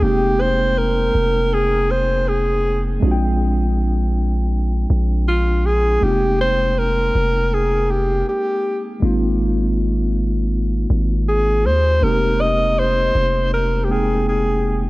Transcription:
0.00 F1 G#3 A#3 C4 D#4 G4
0.05 G5
0.41 C5
0.78 A#4
1.15 F1
1.54 G#4
1.91 C5
2.28 G#4
3.00 A#1 G#3 C4 D4 F4
3.05 F#4
3.11 G5
4.90 A#1
5.28 F4
5.66 G#4
6.00 F1 G#3 A#3 C4 D#4 G4
6.05 F4
6.12 G5
6.41 C5
6.79 A#4
7.15 F1
7.54 G#4
7.91 G4
8.29 G4
9.00 G#1 G#3 A#3 C4
9.04 D#4 F4
10.90 G#1
11.28 G#4
11.65 D#2 C5
12.00 F1 G#3 A#3 C4 D#4 A#4
12.05 G4
12.41 D#5
12.79 C5
13.15 F1
13.54 A#4
13.84 G4
13.89 G#3 A#3 C4 D#4 G#4 G5
14.29 G#4

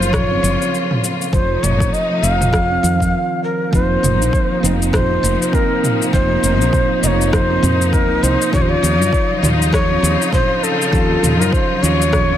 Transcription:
Already playing: F#1 C#3 A#3 F4 C5
0.02 shaker
0.13 F3 C#5, kick, cross-stick, mid tom, shaker
0.31 C4
0.43 F#1 F3, shaker
0.62 shaker
0.74 shaker
0.91 mid tom
1.04 shaker
1.22 shaker
1.32 F1 C3 F3 A3 D#4 C5, kick, shaker
1.63 F1 F3 C#5, mid tom, shaker
1.80 A1 D#4, kick, shaker
1.93 D#5, shaker
2.11 F3
2.22 F1 F3 F5, shaker
2.41 mid tom, shaker
2.53 F3, kick, cross-stick, shaker
2.71 C4
2.83 F2 D#3, shaker
3.00 F3, kick, shaker
3.44 A#4
3.71 F1 C3 F3 A#3 C4 D#4 C5, kick, shaker
3.75 D#4
4.03 F1, mid tom, shaker
4.21 A#1 D#4, shaker
4.33 kick, shaker
4.51 F3
4.61 F1 F3 A#3 C4
4.65 D#4, shaker
4.82 shaker
4.93 F3 C5, kick, cross-stick, mid tom, shaker
5.11 C4
5.23 F1 F3, shaker
5.42 shaker
5.52 A#3 C4 D#4 A#4, kick, shaker
5.83 mid tom, shaker
6.02 shaker
6.11 F1 F3 A#3 C4 D#4 C5, kick, shaker
6.43 F1 F3, shaker
6.61 A#1 D#4, shaker
6.73 kick, mid tom, shaker
6.91 F3
7.01 F1 C3 F3 A#3 D#4 D#5, shaker
7.07 C#5
7.21 shaker
7.33 F3 C5, kick, cross-stick, shaker
7.51 C4
7.63 F2 F3, mid tom, shaker
7.82 shaker
7.92 A#3 C4 D#4 A#4, kick, shaker
8.10 C2
8.23 C2 C5, shaker
8.42 shaker
8.53 D#2 C#3 F3 C#4 F4 C#5, kick, mid tom, shaker
8.62 C5
8.69 C#5
8.83 D#2 F3, shaker
9.00 F#2 D#4, shaker
9.13 kick, shaker
9.31 F#3
9.43 D#2 F3 F4, mid tom, shaker
9.62 shaker
9.73 F3 C#5, kick, cross-stick, shaker
9.91 C4
10.02 D#2 F3, shaker
10.22 shaker
10.33 F4 C5, kick, mid tom, shaker
10.63 A4, shaker
10.82 shaker
10.93 D#2 F3 C#4 F4, kick, shaker
11.23 D#2 F3, mid tom, shaker
11.40 F#2 D#4 A#4, shaker
11.52 C5, kick, shaker
11.71 F#3
11.82 D#2 F3 C#4 F4 C#5, shaker
12.02 shaker
12.13 F3, kick, cross-stick, mid tom, shaker
12.32 C4

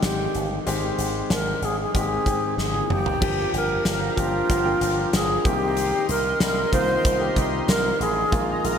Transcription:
Already playing: D#3 G#3 C4 G4
0.03 G#1 G4, snare, closed hi-hat
0.35 G1, closed hi-hat
0.66 G#1 D#3 G#3 C4 G4, closed hi-hat
0.98 G#1, closed hi-hat
1.30 G#1 A#4, snare, closed hi-hat
1.62 G#1 G#4, closed hi-hat
1.81 G#4
1.94 G#1 D#3 G#3 C4 G4 G#4, kick, closed hi-hat
2.26 G#2 D#3 G#3 C4 G5, kick, closed hi-hat
2.58 G#1, snare
2.62 G#4
2.74 high tom
2.89 F#1 G4, mid tom
3.06 floor tom
3.21 G1 F3 A#3 D4 G4 F5 G5 A#5, kick, crash
3.53 G1 A#4, closed hi-hat
3.85 G1 A#4, snare, closed hi-hat, tambourine
4.16 G1 F3 A#3 D4 F4 G4, kick, closed hi-hat
4.50 G1, kick, closed hi-hat
4.64 F3 A#3 D4 G5
4.81 G1, closed hi-hat
5.13 G1 G#4, snare, closed hi-hat, tambourine
5.44 C2 D#3 A#3 C4 G4 A#4 D#5 C6, kick, closed hi-hat
5.77 closed hi-hat
6.09 C2 A#4, closed hi-hat
6.40 C2 A#4, snare, closed hi-hat, tambourine
6.72 C2 D#3 A#3 C4 F4 C5, kick, closed hi-hat
7.05 C2, kick, closed hi-hat
7.20 D#3 A#3 C4 G4
7.36 C2, kick, closed hi-hat
7.68 C2 A#4, snare, closed hi-hat, tambourine
8.00 A1 G#4, closed hi-hat
8.31 A#1 D#3 G#3 A#3 F4 D#5 A#5, kick, closed hi-hat
8.64 A#1 A#4, closed hi-hat

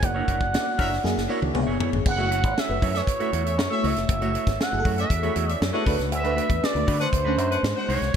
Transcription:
0.02 F#1 A#3 E4 F#4 D5 F#5, muted clean electric guitar stroke, kick, closed hi-hat
0.15 D4 E4 A#4 C#5
0.28 F#1 D4 E4 A#4 C#5, kick, closed hi-hat
0.41 muted clean electric guitar stroke, kick
0.53 A#3 E4 F#4 C#5, snare, closed hi-hat
0.60 D5
0.66 muted clean electric guitar stroke
0.78 F#1 C#4 D4 E4 A#4 C#5 E5, kick, open hi-hat
0.91 muted clean electric guitar stroke, snare
1.03 F#2 A#3 E4 F#4 G#4, snare
1.16 F#1, muted clean electric guitar stroke, snare
1.28 A#3 D4 E4 F#4 A#4 C#5 D5
1.42 C#2, muted clean electric guitar stroke, high tom
1.54 C#2 B3 D4 G#4 C#5, muted clean electric guitar stroke, mid tom
1.61 E4
1.67 F#1 B3 E4 G#4 C#5
1.79 B3 E4 G#4 C#5, floor tom
1.92 G#1, muted clean electric guitar stroke, floor tom
2.05 F#1 F#5, muted clean electric guitar stroke, kick, crash
2.18 A3 E4 F#4 C#5
2.31 A3 E4 F#4 C#5, closed hi-hat
2.44 G#1, muted clean electric guitar stroke, kick, closed hi-hat
2.58 E5, snare
2.68 F#1 A3 E4 F#4 B4, muted clean electric guitar stroke
2.82 F#2 A3 E4 F#4 C#5, kick, open hi-hat
2.94 C#4 A4 C#5 E5, muted clean electric guitar stroke, snare, closed hi-hat
3.07 muted clean electric guitar stroke, kick, closed hi-hat
3.20 A3 C#4 E4 F#4 A4 C#5 E5, closed hi-hat
3.32 E2 A3 E4 F#4 C#5, closed hi-hat
3.45 C#4 A4 E5, muted clean electric guitar stroke, closed hi-hat
3.58 F#2, muted clean electric guitar stroke, snare
3.70 A3 C#4 E4 F#4 A4 C#5 E5, muted clean electric guitar stroke
3.83 C#2 A3 E4 F#4 C#5 E5, open hi-hat
3.96 F1, muted clean electric guitar stroke, snare, closed hi-hat
4.09 F#1, muted clean electric guitar stroke, kick, closed hi-hat
4.21 A3 E4 F#4 C#5 E5, closed hi-hat
4.34 A3 E4 F#4 C#5, closed hi-hat
4.46 G#1, muted clean electric guitar stroke, kick, snare, closed hi-hat
4.61 F#5, snare
4.72 F#1 A3 E4 F#4 G#4, muted clean electric guitar stroke
4.80 A4
4.85 F#2 A3 E4 F#4 C#5, kick, open hi-hat
4.98 C#4 A4 E5, muted clean electric guitar stroke, closed hi-hat
5.10 E2, muted clean electric guitar stroke, kick, closed hi-hat
5.23 A3 C#4 E4 F#4 A4 C#5 E5, closed hi-hat
5.34 E2 A3 E4 F#4 C#5, closed hi-hat
5.47 C#4 A4 E5, muted clean electric guitar stroke, closed hi-hat
5.52 D5
5.60 F#2, muted clean electric guitar stroke, snare
5.73 A3 D4 E4 F#4 B4 C#5 F#5
5.85 D2 A3 D4 F#4 B4, kick, open hi-hat
5.98 C#2, muted clean electric guitar stroke, snare, closed hi-hat
6.11 D2 E5, muted clean electric guitar stroke, closed hi-hat
6.24 A3 D4 F#4 B4, closed hi-hat
6.36 A3 D4 F#4 B4, closed hi-hat
6.49 E2, muted clean electric guitar stroke, kick, closed hi-hat
6.64 D5, snare
6.75 D2 A3 D4 F#4 B4, muted clean electric guitar stroke, closed hi-hat
6.86 D3 A3 D4 F#4 B4, kick, open hi-hat
7.00 D4 B4 C5 F#5, muted clean electric guitar stroke, snare, closed hi-hat
7.13 D2, muted clean electric guitar stroke, kick, closed hi-hat
7.25 A3 C#4 D4 F#4 B4 F#5
7.37 F#2 A3 D4 F#4 B4, closed hi-hat
7.50 D4 B4 F#5, muted clean electric guitar stroke, closed hi-hat
7.62 G#2, muted clean electric guitar stroke, snare
7.76 G#3 D#4 F#4 C5 F#5, muted clean electric guitar stroke
7.88 C2 G#3 D#4 F#4 C5 C#5, open hi-hat
8.01 C2, muted clean electric guitar stroke, snare, closed hi-hat

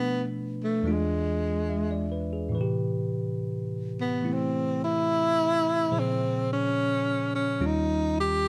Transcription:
Already playing: B2 F3 A3 B3 D4 B4
0.64 A3
0.83 E2 E3 G#3 D4
0.87 F4
0.92 G#3
1.69 E5
1.91 D5
2.12 B4
2.33 G#4
2.49 A2 E3
2.55 C3 B4
2.61 G4
4.01 B3
4.22 E3 A3 C4 E4
4.33 C4
4.84 E4
5.92 A#2 C#3 F3 G#4 C5
5.99 C4
6.53 C#4
7.35 C#4
7.60 D#2 D#3 G3 C#4 F4
7.66 D#4
8.20 G4

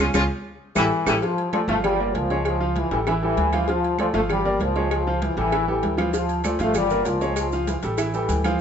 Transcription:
0.00 C#2
0.14 C#2 F3 G#3 C#4 F4 G#4, cowbell, high conga, high timbale, claves, maracas
0.75 A1 E3 A3 C#4 E4 G4 A4, cowbell, high conga, high timbale, claves, maracas
1.06 A1 E3 A3 C#4 E4 G4 A4, cowbell, high conga, high timbale, claves, maracas
1.22 F3 F4 F5, cowbell, high conga, low agogo
1.38 high conga, low agogo
1.52 F3 A3 A4 D5, cowbell, high conga, low timbale, low agogo, claves
1.68 G1 F3 A3 F4 F5, cowbell, low agogo
1.84 G3, cowbell, high conga, low conga, low agogo, claves
2.00 A#3 A#4 D5, high conga
2.14 C#2 F3, cowbell, high conga, low timbale, low agogo
2.30 G#3 G#4 C#5, low agogo
2.45 F3, cowbell, low agogo, claves
2.60 F3 F4 F5, high conga
2.76 E3, cowbell, high conga, low timbale, low agogo
2.91 A1 E3 G3 G4 A4, cowbell, high conga
3.07 E3 E4 E5, cowbell, high conga, low agogo, claves
3.22 E3 G3 G4 A4, high conga
3.37 D2, cowbell, high conga, low timbale, low agogo
3.53 F3 F4 F5, cowbell, high conga, low agogo, claves
3.68 F3 F4 F5, cowbell, high conga, low agogo
3.84 high conga, low agogo
3.98 F3 A3 A4 D5, cowbell, high conga, low timbale, low agogo, claves
4.14 G1 F3 A3 F4 F5, cowbell, low agogo
4.29 G3, cowbell, high conga, low conga, low agogo, claves
4.45 A#3 A#4 D5, high conga, low conga
4.60 C#2 F3, cowbell, high conga, low timbale, low agogo
4.76 G#3 G#4 C#5, high conga, low agogo
4.91 F3, cowbell, low agogo, claves
5.07 F3 F4 F5, high conga
5.22 E3, cowbell, high conga, low timbale, low agogo
5.37 A1 E3 G3 G4 A4, cowbell, high conga
5.52 E3 E4 E5, cowbell, high conga, low agogo, claves
5.67 E3 G3 G4 A4, high conga
5.83 D2, cowbell, high conga, low timbale, low agogo
5.97 F3 F4 F5, cowbell, high conga, low agogo, claves
6.13 F3 F4 F5, cowbell, high conga, low agogo, maracas
6.29 high conga, low agogo, maracas
6.44 F3 A3 A4 D5, cowbell, high conga, low timbale, low agogo, claves, maracas
6.59 G1 F3 A3 F4 F5, cowbell, high conga, low agogo, maracas
6.74 G3, cowbell, high conga, low conga, low agogo, claves, maracas
6.90 A#3 A#4 D5, high conga, low conga, maracas
7.05 C#2 F3, cowbell, high conga, low timbale, low agogo, maracas
7.21 G#3 G#4 C#5, low agogo, maracas
7.36 F3, cowbell, high conga, low agogo, claves, maracas
7.52 F3 F4 F5, high conga, maracas
7.67 E3, cowbell, high conga, low timbale, low agogo, maracas
7.83 A1 G3 G4 A4, cowbell, high conga, maracas
7.98 E3 E4 E5, cowbell, high conga, low agogo, claves, maracas
8.13 E3 G3 G4 A4, high conga, maracas
8.29 D2, cowbell, high conga, low timbale, low agogo, maracas
8.44 F3 F4 F5, cowbell, high conga, low agogo, claves, maracas

